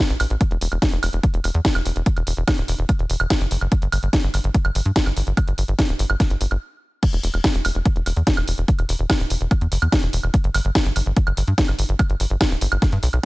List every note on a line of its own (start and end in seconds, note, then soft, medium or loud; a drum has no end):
0.10 0.16 A1 medium
0.10 closed hi-hat soft
0.20 0.26 A1 loud
0.20 open hi-hat loud
0.20 high woodblock medium
0.30 0.36 A1 medium
0.30 closed hi-hat soft
0.41 kick loud
0.41 closed hi-hat medium
0.51 0.57 E1 medium
0.51 closed hi-hat soft
0.61 0.67 E1 loud
0.61 open hi-hat loud
0.72 0.78 E1 medium
0.72 closed hi-hat soft
0.72 high woodblock soft
0.82 kick loud
0.82 snare loud
0.82 closed hi-hat loud
0.92 0.98 E1 medium
0.92 closed hi-hat soft
1.03 1.09 E1 loud
1.03 open hi-hat loud
1.03 high woodblock medium
1.13 1.19 E1 medium
1.13 closed hi-hat soft
1.23 kick loud
1.23 closed hi-hat medium
1.34 1.40 E1 medium
1.34 closed hi-hat soft
1.44 1.50 E1 loud
1.44 open hi-hat loud
1.44 high woodblock soft
1.54 1.60 E2 medium
1.54 closed hi-hat soft
1.65 kick loud
1.65 snare loud
1.65 closed hi-hat medium
1.75 1.81 E1 medium
1.75 closed hi-hat soft
1.75 high woodblock medium
1.85 1.91 E1 loud
1.85 open hi-hat loud
1.96 2.02 E1 medium
1.96 closed hi-hat soft
2.06 kick loud
2.06 closed hi-hat loud
2.17 2.22 E1 medium
2.17 closed hi-hat soft
2.17 high woodblock soft
2.27 2.33 E1 loud
2.27 open hi-hat loud
2.37 2.43 E1 loud
2.37 closed hi-hat soft
2.48 kick loud
2.48 snare loud
2.48 closed hi-hat medium
2.48 high woodblock medium
2.58 2.64 D1 medium
2.58 closed hi-hat soft
2.68 2.74 E1 loud
2.68 open hi-hat loud
2.79 2.85 E1 loud
2.79 closed hi-hat soft
2.89 kick loud
2.89 closed hi-hat medium
2.89 high woodblock soft
2.99 3.05 E1 medium
2.99 closed hi-hat soft
3.10 3.16 E1 loud
3.10 open hi-hat loud
3.20 3.26 E1 medium
3.20 closed hi-hat soft
3.20 high woodblock medium
3.30 kick loud
3.30 snare loud
3.30 closed hi-hat loud
3.41 3.47 F#1 medium
3.41 closed hi-hat soft
3.51 3.57 F#1 loud
3.51 open hi-hat loud
3.61 3.67 F#1 medium
3.61 closed hi-hat soft
3.61 high woodblock soft
3.72 kick loud
3.72 closed hi-hat loud
3.82 3.88 G1 medium
3.82 closed hi-hat soft
3.92 3.98 G1 loud
3.92 open hi-hat loud
3.92 high woodblock medium
4.03 4.09 G1 medium
4.03 closed hi-hat soft
4.13 kick loud
4.13 snare loud
4.13 closed hi-hat loud
4.23 4.29 G1 medium
4.23 closed hi-hat soft
4.34 4.40 G1 loud
4.34 open hi-hat loud
4.34 high woodblock soft
4.44 4.50 G1 medium
4.44 closed hi-hat soft
4.54 kick loud
4.54 closed hi-hat loud
4.65 4.71 G1 medium
4.65 closed hi-hat soft
4.65 high woodblock medium
4.75 4.81 G1 loud
4.75 open hi-hat loud
4.86 4.91 G2 medium
4.86 closed hi-hat soft
4.96 kick loud
4.96 snare loud
4.96 closed hi-hat loud
5.06 5.12 G1 medium
5.06 closed hi-hat soft
5.06 high woodblock soft
5.17 5.22 G1 medium
5.17 open hi-hat loud
5.27 5.33 G1 medium
5.27 closed hi-hat soft
5.37 kick loud
5.37 closed hi-hat loud
5.37 high woodblock medium
5.48 5.54 G1 medium
5.48 closed hi-hat soft
5.58 5.64 G1 loud
5.58 open hi-hat loud
5.68 5.74 G1 loud
5.68 closed hi-hat soft
5.79 kick loud
5.79 snare loud
5.79 closed hi-hat loud
5.79 high woodblock soft
5.89 5.95 D1 medium
5.89 closed hi-hat soft
5.99 6.05 G1 loud
5.99 open hi-hat loud
6.10 6.16 G1 medium
6.10 closed hi-hat soft
6.10 high woodblock medium
6.20 kick loud
6.20 snare medium
6.20 closed hi-hat loud
6.30 6.36 G1 medium
6.30 closed hi-hat soft
6.41 6.47 G1 medium
6.41 open hi-hat loud
6.51 6.57 G1 medium
6.51 closed hi-hat soft
6.51 high woodblock soft
7.03 kick loud
7.03 closed hi-hat loud
7.03 crash loud
7.13 7.19 E1 medium
7.13 closed hi-hat soft
7.23 7.29 E1 loud
7.23 open hi-hat loud
7.34 7.40 E1 medium
7.34 closed hi-hat soft
7.34 high woodblock soft
7.44 kick loud
7.44 snare loud
7.44 closed hi-hat loud
7.54 7.60 E1 medium
7.54 closed hi-hat soft
7.65 7.71 E1 loud
7.65 open hi-hat loud
7.65 high woodblock medium
7.75 7.81 E1 medium
7.75 closed hi-hat soft
7.85 kick loud
7.85 closed hi-hat loud
7.96 8.02 E1 medium
7.96 closed hi-hat soft
8.06 8.12 E1 loud
8.06 open hi-hat loud
8.06 high woodblock soft
8.17 8.22 E2 medium
8.17 closed hi-hat soft
8.27 kick loud
8.27 snare loud
8.27 closed hi-hat loud
8.37 8.43 E1 medium
8.37 closed hi-hat soft
8.37 high woodblock medium
8.48 8.54 E1 loud
8.48 open hi-hat loud
8.58 8.64 E1 medium
8.58 closed hi-hat soft
8.68 kick loud
8.68 closed hi-hat medium
8.79 8.85 E1 medium
8.79 closed hi-hat soft
8.79 high woodblock soft
8.89 8.95 E1 loud
8.89 open hi-hat loud
8.99 9.05 E1 medium
8.99 closed hi-hat soft
9.10 kick loud
9.10 snare loud
9.10 closed hi-hat loud
9.10 high woodblock medium
9.20 9.26 D1 medium
9.20 closed hi-hat soft
9.30 9.36 E1 loud
9.30 open hi-hat loud
9.41 9.47 E1 medium
9.41 closed hi-hat soft
9.51 kick loud
9.51 closed hi-hat medium
9.51 high woodblock soft
9.61 9.67 E2 medium
9.61 closed hi-hat soft
9.72 9.78 F#1 loud
9.72 open hi-hat loud
9.82 9.88 E2 medium
9.82 closed hi-hat soft
9.82 high woodblock medium
9.92 kick loud
9.92 snare loud
9.92 closed hi-hat loud
10.03 10.09 E1 medium
10.03 closed hi-hat soft
10.13 10.19 E1 loud
10.13 open hi-hat loud
10.23 10.29 E1 medium
10.23 closed hi-hat soft
10.23 high woodblock soft
10.34 kick loud
10.34 closed hi-hat medium
10.44 10.50 G1 medium
10.44 closed hi-hat soft
10.54 10.60 G1 loud
10.54 open hi-hat loud
10.54 high woodblock medium
10.65 10.71 G1 loud
10.65 closed hi-hat soft
10.75 kick loud
10.75 snare loud
10.75 closed hi-hat loud
10.85 10.91 G1 medium
10.85 closed hi-hat soft
10.96 11.02 G1 loud
10.96 open hi-hat loud
10.96 high woodblock soft
11.06 11.12 G1 medium
11.06 closed hi-hat soft
11.16 kick loud
11.16 closed hi-hat medium
11.27 11.33 G1 medium
11.27 closed hi-hat soft
11.27 high woodblock medium
11.37 11.43 G1 loud
11.37 open hi-hat loud
11.48 11.54 G2 medium
11.48 closed hi-hat soft
11.58 kick loud
11.58 snare loud
11.58 closed hi-hat medium
11.68 11.74 G1 medium
11.68 closed hi-hat soft
11.68 high woodblock soft
11.79 11.85 G1 loud
11.79 open hi-hat loud
11.89 11.95 G1 medium
11.89 closed hi-hat soft
11.99 kick loud
11.99 closed hi-hat medium
11.99 high woodblock medium
12.10 12.16 G1 medium
12.10 closed hi-hat soft
12.20 12.26 G1 medium
12.20 open hi-hat loud
12.30 12.36 G1 medium
12.30 closed hi-hat soft
12.41 kick loud
12.41 snare loud
12.41 closed hi-hat loud
12.41 high woodblock soft
12.51 12.57 D1 medium
12.51 closed hi-hat soft
12.61 12.67 G1 loud
12.61 open hi-hat loud
12.72 12.78 G1 medium
12.72 closed hi-hat soft
12.72 high woodblock medium
12.82 kick loud
12.82 snare medium
12.82 closed hi-hat medium
12.92 12.98 G2 medium
12.92 closed hi-hat soft
13.03 13.09 B1 loud
13.03 open hi-hat loud
13.13 13.19 B1 medium
13.13 closed hi-hat soft
13.13 high woodblock soft